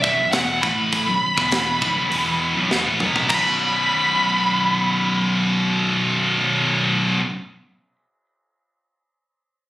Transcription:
0.02 B0 B1 F#2 E5, kick
0.18 B0 B1 F#2
0.32 E1 E2 B2 E3 F#5, snare, open hi-hat
0.62 A1 A2 E3 A3 B5, kick
0.92 kick, open hi-hat
1.07 B0 B1 F#2
1.36 E1 E2 B2 E3, kick
1.52 snare, open hi-hat
1.82 C#1 C#2 G#2, kick
1.95 B0 B1 F#2
2.10 E1 E2 B2 E3, open hi-hat
2.55 B0 B1 F#2
2.71 E1 E2 B2, snare
2.85 A1 A2 E3
3.00 B1 B2 F#3 B3, mid tom
3.16 floor tom
3.29 B0 B1 F#2 B5, kick, crash
3.33 B2

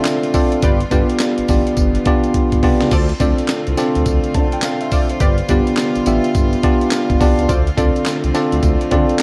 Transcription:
Already playing: D3 A3 C4 D4 F4 A4 D5 E5
0.05 snare, clap, closed hi-hat, tambourine
0.23 closed hi-hat
0.34 C4 D4 F4 A4 C5 D5, kick, open hi-hat, tambourine
0.52 closed hi-hat
0.62 G1 G3 B3 F4 G4 B4 D5, kick, closed hi-hat, tambourine
0.80 closed hi-hat
0.91 G1 B3 D4 F4 G4 B4 D5, kick, closed hi-hat, tambourine
1.10 closed hi-hat
1.20 snare, clap, closed hi-hat, tambourine
1.38 A1, closed hi-hat
1.48 A1 B3 D4 F4 G4 D5, kick, open hi-hat, tambourine
1.67 closed hi-hat
1.77 G1, kick, closed hi-hat, tambourine
1.95 closed hi-hat
2.05 B3 D4 F4 G4 D5, kick, closed hi-hat
2.24 closed hi-hat
2.34 kick, closed hi-hat
2.52 G1, kick, closed hi-hat
2.63 C2 B3 D4 F4 G4 D5, kick, open hi-hat
2.81 C#2, snare, closed hi-hat
2.91 D2 A3 C4 F4 A4 C5 D5, kick, crash, tambourine
3.09 closed hi-hat
3.20 D2 C4 D4 F4 A4 C5 D5, kick, closed hi-hat, tambourine
3.38 closed hi-hat
3.48 snare, clap, closed hi-hat, tambourine
3.67 C2, closed hi-hat
3.77 C4 D4 F4 A4 D5, snare, closed hi-hat, tambourine
3.95 D2, closed hi-hat
4.06 D2, kick, closed hi-hat, tambourine
4.24 closed hi-hat
4.34 D3 A5, kick, closed hi-hat
4.52 G5, closed hi-hat
4.62 F5, snare, clap, closed hi-hat, tambourine
4.81 E5, closed hi-hat
4.91 F4 A4 C5 D5, kick, open hi-hat, tambourine
5.09 C5, closed hi-hat
5.20 G1 G3 B3 F4 G4 B4 D5, kick, closed hi-hat, tambourine
5.38 closed hi-hat
5.49 G1 B3 D4 F4 G4 B4 D5, kick, closed hi-hat, tambourine
5.67 closed hi-hat
5.77 snare, clap, closed hi-hat, tambourine
5.96 A1, closed hi-hat
6.06 A1 B3 D4 F4 G4 E5, closed hi-hat, tambourine
6.24 closed hi-hat
6.35 G1, kick, closed hi-hat, tambourine
6.53 closed hi-hat
6.63 B3 D4 F4 G4 D5, kick, closed hi-hat
6.81 closed hi-hat
6.91 F5, snare, clap, closed hi-hat, tambourine
7.10 G1, kick, closed hi-hat
7.20 C2 B3 D4 F4 G4 D5 A5, kick, open hi-hat, tambourine
7.39 C#2, closed hi-hat
7.49 D2 D3 A3 C4 F4 A4 C5 D5, kick, closed hi-hat, tambourine
7.67 closed hi-hat
7.77 D2 C4 D4 F4 A4 C5 D5, kick, closed hi-hat, tambourine
7.96 closed hi-hat
8.06 snare, clap, closed hi-hat, tambourine
8.24 C2, closed hi-hat
8.34 C4 D4 F4 A4 D5, snare, closed hi-hat, tambourine
8.52 D2, closed hi-hat
8.63 D2, kick, closed hi-hat, tambourine
8.81 closed hi-hat
8.91 D3 C4 D4 F4 A4 D5, kick, closed hi-hat
9.09 closed hi-hat
9.19 clap

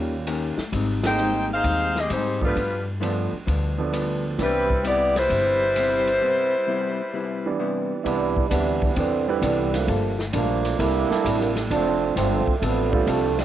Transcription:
Already playing: D#2 D#3 G3 A#3 C#4 F4 G4
0.27 D#3 A#3 C#4 G4, hi-hat pedal, ride
0.57 muted upright bass stroke, snare
0.72 G#1 G#2 G3 C4 D#4, kick, ride
1.03 G#3 A#3 C4 D#4 G5, snare, ride
1.08 D#4 G#4 C5
1.18 G#2 G3 C4 D#4, hi-hat pedal
1.54 D#4 G#4 C5 F5
1.63 D#2 G#2 G3 C4 D#4, kick, ride
1.96 snare
2.00 C4 G4 G#4 D#5
2.09 G#2 G3 C4 D#4 G4 C5, hi-hat pedal, ride
2.14 G#3 D#4
2.41 F3 A3 B3 D4 F4, kick
2.45 G3 D4 B4
2.55 G2 F3 B3 D4, kick, ride
3.00 G2 F3 A3 B3 D4, hi-hat pedal, ride
3.32 muted upright bass stroke
3.46 D2 G2 F3 B3 D4, kick, ride
3.78 F3 A3 B3 D4
3.92 G2 F3 B3 D4, hi-hat pedal, ride
4.38 C2 C3 E3 G3 B3 D4 E4, kick, snare, ride
4.42 G3 C4 B4
4.70 kick
4.83 C3 G3 B3 E4, hi-hat pedal, ride
4.87 B3 G4 D5
5.16 G3 E4 B4 C5, snare, ride
5.30 G1 C3 G3 B3 E4, kick, ride
5.76 C3 G3 B3 E4, hi-hat pedal, ride
6.07 ride
6.21 C3 G3 B3 E4
6.67 C3 G3 B3 E4
7.13 C3 G3 B3 E4
7.46 E3 G3 B3 D4
7.59 C3 G3 B3 E4
8.04 C2 C3 E3 G3 B3 D4 E4, kick, ride
8.37 kick
8.49 D2 C3 E3 G3 B3 D4, kick, hi-hat pedal, ride
8.82 kick, ride
8.95 E2 C3 D3 E3 G3 B3 C4 D4, kick, ride
9.28 G3 C4 D4 E4 B4
9.42 C2 C3 D3 E3 G3 B3 D4, kick, hi-hat pedal, ride
9.73 D3 F3 A3 A#3, snare, ride
9.87 G1 G3 A#3 F4 A4, kick, ride
10.19 snare
10.33 A#1 F3 G3 A3 A#3 D4 F4 A4, kick, hi-hat pedal, ride
10.65 snare, ride
10.78 C2 C3 G3 A#3 D4 E4 A4, kick, ride
11.09 G3 A#3 D4 E4 A4, snare
11.24 A1 C3 A#3 E4 A4, kick, hi-hat pedal, ride
11.41 snare
11.56 snare, ride
11.71 F1 F3 A3 C4 D4 A4, kick, ride
12.16 G1 D3 F3 A3 C4 D4 A4, kick, snare, hi-hat pedal, ride
12.47 muted upright bass stroke, kick
12.58 A1 F3 A3, kick, ride
12.63 D3 F3 A3 B3 C4 D4 A4
12.91 G3 A3 C4 D4 F4, kick
13.07 C2 F3 C4 D4 A4, hi-hat pedal, ride
13.11 C3 D3 F3 A3
13.38 B2 D3 F3 G3, snare, ride

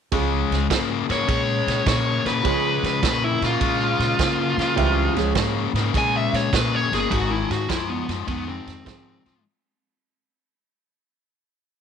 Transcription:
0.12 C#2 C#3 F3 G#3 C#4 F4 G#4, kick, ride
0.51 C#2, snare, ride
0.70 G#2 C#3 A#3, kick, snare, ride
1.09 G#2 C#3 A#3 C#5, snare, ride
1.28 A#2 C#3 G#3, kick, ride
1.67 A#2, snare, ride
1.86 A#2 C#3 A#3 C#5, kick, snare, ride
2.25 A#2 C#3 A#3 B4, snare, ride
2.43 C#3 F3 G#3 C#4 F4 G#4, kick, ride
2.83 C#3 B4, snare, ride
3.03 A#2 C#3 A#3, kick, snare, ride
3.24 E4
3.42 A#2 C#3 A#3 F4, snare, ride
3.61 A#2 C#3 G#3, kick, ride
3.99 A#2, snare, ride
4.19 C#3 A#3, kick, snare, ride
4.57 C#3 A#3, snare, ride
4.76 C#2 C#3 E3 G3 G#3 C4 E4 G4, kick, ride
5.15 C#2 F3 G#3 C#4 F4 G#4, snare, ride
5.35 G#2 C#3 A#3, kick, snare, ride
5.73 G#2 C#3 A#3, snare, ride
5.94 A#2 C#3 G#3 G#5, kick, snare, ride
6.17 E5
6.33 A#2 C#5, snare, ride
6.53 A#2 C#3 A#3 B4, kick, snare, ride
6.75 C#5
6.92 G1 C#3 A#3 G#4, snare, ride
7.11 G#1 G#2 D#3 F#4, kick, ride
7.31 E4
7.50 G#2 F#4, snare, ride
7.69 F#2 G#2 F3 E4, kick, snare, ride
7.89 B3
8.08 F#2 G#2 F3, snare, ride
8.28 F2 G#2 D#3 B3, kick, ride
8.49 C4
8.67 F2, snare, ride
8.85 G#2 D#3 F3 G#3 C4 D#4 G#4, kick, snare, ride
9.25 G#2 F3, snare, ride

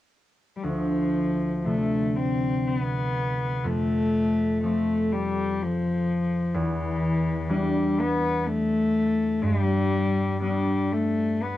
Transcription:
0.56 G3
0.63 D2 F3
1.64 C3 D3 F3 A3
2.16 C4
2.67 B3
3.64 F2 A3
4.63 F3 A3 C4
5.12 G3
5.61 F3
6.54 E2 E3
7.49 E3 G3 D4
8.00 B3
8.46 A3
9.42 G2 G3
10.40 G3 B3 D4
10.92 A3
11.42 B3

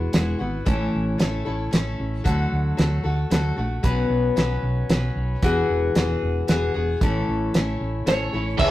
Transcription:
Already playing: G#3 B3 E4 F#4
0.13 E1 G#3 B3 E4 F#4, snare, closed hi-hat
0.38 G#1 B3 E4 F#4
0.65 A1 A2 E3 A3 C#4 E4 A4, kick, closed hi-hat
0.95 A1
1.18 A1 A3 C#4 E4 A4, snare, closed hi-hat
1.45 A1 A3 C#4 E4 A4
1.71 A1 A3 C#4 E4 A4, snare, closed hi-hat
2.00 A1
2.24 D2 D3 F#3 A3 F#4 A4, kick, closed hi-hat
2.52 D2
2.77 D2 F#3 A3 F#4 A4, snare, closed hi-hat
3.04 D2 A3 F#4 A4
3.30 D2 F#3 A3 F#4 A4, snare, closed hi-hat
3.56 A#1 A3 F#4 A4
3.83 B1 B2 F#3 B3 C#4 B4, kick, closed hi-hat
4.10 B1
4.36 B1 F#3 B3 C#4 B4, snare, closed hi-hat
4.63 B1
4.89 B1 F#3 B3 C#4 B4, snare, closed hi-hat
5.16 B1
5.42 E1 E3 B3 F#4 G#4, kick, closed hi-hat
5.69 E1
5.95 E1 E3 B3 F#4 G#4, snare, closed hi-hat
6.22 E1
6.47 E1 E3 B3 F#4 G#4, snare, closed hi-hat
6.74 E1 B3 F#4 G#4
7.01 A1 A2 E3 A3 C#4 E4 A4, kick, closed hi-hat
7.28 A1
7.54 A1 A3 C#4 E4 A4, snare, closed hi-hat
7.81 A1
8.06 A1 A3 C#4 E4 A4 C#5, snare, closed hi-hat
8.33 A1 A3 C#4 E4 A4
8.59 C#2 C#3 E3 G#3 C#4 E4 G#4 E5, kick, crash

